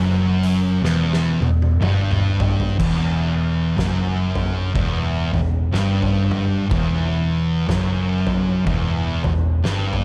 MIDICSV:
0, 0, Header, 1, 4, 480
1, 0, Start_track
1, 0, Key_signature, 1, "minor"
1, 0, Tempo, 978793
1, 1370, Time_signature, 4, 2, 24, 8
1, 4925, End_track
2, 0, Start_track
2, 0, Title_t, "Distorted electric guitar"
2, 0, Program_c, 0, 30
2, 0, Note_on_c, 0, 42, 105
2, 401, Note_off_c, 0, 42, 0
2, 410, Note_on_c, 0, 40, 108
2, 685, Note_off_c, 0, 40, 0
2, 694, Note_on_c, 0, 40, 75
2, 851, Note_off_c, 0, 40, 0
2, 890, Note_on_c, 0, 43, 100
2, 1364, Note_off_c, 0, 43, 0
2, 1369, Note_on_c, 0, 40, 101
2, 1844, Note_off_c, 0, 40, 0
2, 1850, Note_on_c, 0, 42, 95
2, 2324, Note_off_c, 0, 42, 0
2, 2328, Note_on_c, 0, 40, 105
2, 2604, Note_off_c, 0, 40, 0
2, 2613, Note_on_c, 0, 40, 74
2, 2771, Note_off_c, 0, 40, 0
2, 2807, Note_on_c, 0, 43, 106
2, 3281, Note_off_c, 0, 43, 0
2, 3283, Note_on_c, 0, 40, 100
2, 3761, Note_off_c, 0, 40, 0
2, 3765, Note_on_c, 0, 42, 103
2, 4242, Note_off_c, 0, 42, 0
2, 4248, Note_on_c, 0, 40, 99
2, 4524, Note_off_c, 0, 40, 0
2, 4533, Note_on_c, 0, 40, 74
2, 4690, Note_off_c, 0, 40, 0
2, 4725, Note_on_c, 0, 43, 97
2, 4925, Note_off_c, 0, 43, 0
2, 4925, End_track
3, 0, Start_track
3, 0, Title_t, "Picked electric bass"
3, 0, Program_c, 1, 34
3, 0, Note_on_c, 1, 30, 100
3, 389, Note_off_c, 1, 30, 0
3, 402, Note_on_c, 1, 28, 85
3, 670, Note_off_c, 1, 28, 0
3, 688, Note_on_c, 1, 28, 77
3, 874, Note_off_c, 1, 28, 0
3, 881, Note_on_c, 1, 31, 88
3, 1346, Note_off_c, 1, 31, 0
3, 1373, Note_on_c, 1, 28, 92
3, 1832, Note_off_c, 1, 28, 0
3, 1848, Note_on_c, 1, 30, 94
3, 2310, Note_off_c, 1, 30, 0
3, 2330, Note_on_c, 1, 28, 88
3, 2594, Note_off_c, 1, 28, 0
3, 2613, Note_on_c, 1, 28, 73
3, 2797, Note_off_c, 1, 28, 0
3, 2809, Note_on_c, 1, 31, 90
3, 3270, Note_off_c, 1, 31, 0
3, 3291, Note_on_c, 1, 28, 89
3, 3751, Note_off_c, 1, 28, 0
3, 3770, Note_on_c, 1, 30, 95
3, 4230, Note_off_c, 1, 30, 0
3, 4252, Note_on_c, 1, 28, 88
3, 4515, Note_off_c, 1, 28, 0
3, 4534, Note_on_c, 1, 28, 78
3, 4716, Note_off_c, 1, 28, 0
3, 4730, Note_on_c, 1, 31, 89
3, 4925, Note_off_c, 1, 31, 0
3, 4925, End_track
4, 0, Start_track
4, 0, Title_t, "Drums"
4, 213, Note_on_c, 9, 46, 67
4, 262, Note_off_c, 9, 46, 0
4, 416, Note_on_c, 9, 38, 69
4, 465, Note_off_c, 9, 38, 0
4, 556, Note_on_c, 9, 38, 56
4, 605, Note_off_c, 9, 38, 0
4, 697, Note_on_c, 9, 48, 80
4, 746, Note_off_c, 9, 48, 0
4, 796, Note_on_c, 9, 48, 73
4, 845, Note_off_c, 9, 48, 0
4, 895, Note_on_c, 9, 47, 80
4, 944, Note_off_c, 9, 47, 0
4, 1035, Note_on_c, 9, 45, 81
4, 1084, Note_off_c, 9, 45, 0
4, 1177, Note_on_c, 9, 43, 109
4, 1226, Note_off_c, 9, 43, 0
4, 1275, Note_on_c, 9, 43, 97
4, 1324, Note_off_c, 9, 43, 0
4, 1372, Note_on_c, 9, 36, 107
4, 1374, Note_on_c, 9, 43, 88
4, 1374, Note_on_c, 9, 49, 113
4, 1421, Note_off_c, 9, 36, 0
4, 1423, Note_off_c, 9, 43, 0
4, 1423, Note_off_c, 9, 49, 0
4, 1854, Note_on_c, 9, 43, 80
4, 1859, Note_on_c, 9, 38, 79
4, 1903, Note_off_c, 9, 43, 0
4, 1908, Note_off_c, 9, 38, 0
4, 2135, Note_on_c, 9, 43, 89
4, 2184, Note_off_c, 9, 43, 0
4, 2332, Note_on_c, 9, 36, 104
4, 2334, Note_on_c, 9, 47, 72
4, 2381, Note_off_c, 9, 36, 0
4, 2383, Note_off_c, 9, 47, 0
4, 2617, Note_on_c, 9, 43, 83
4, 2666, Note_off_c, 9, 43, 0
4, 2815, Note_on_c, 9, 38, 73
4, 2864, Note_off_c, 9, 38, 0
4, 2954, Note_on_c, 9, 43, 83
4, 3003, Note_off_c, 9, 43, 0
4, 3096, Note_on_c, 9, 47, 77
4, 3145, Note_off_c, 9, 47, 0
4, 3291, Note_on_c, 9, 36, 113
4, 3292, Note_on_c, 9, 43, 86
4, 3341, Note_off_c, 9, 36, 0
4, 3341, Note_off_c, 9, 43, 0
4, 3771, Note_on_c, 9, 43, 81
4, 3775, Note_on_c, 9, 38, 76
4, 3820, Note_off_c, 9, 43, 0
4, 3824, Note_off_c, 9, 38, 0
4, 4054, Note_on_c, 9, 43, 88
4, 4103, Note_off_c, 9, 43, 0
4, 4251, Note_on_c, 9, 36, 98
4, 4252, Note_on_c, 9, 47, 77
4, 4300, Note_off_c, 9, 36, 0
4, 4301, Note_off_c, 9, 47, 0
4, 4532, Note_on_c, 9, 43, 91
4, 4581, Note_off_c, 9, 43, 0
4, 4733, Note_on_c, 9, 38, 78
4, 4782, Note_off_c, 9, 38, 0
4, 4870, Note_on_c, 9, 43, 86
4, 4919, Note_off_c, 9, 43, 0
4, 4925, End_track
0, 0, End_of_file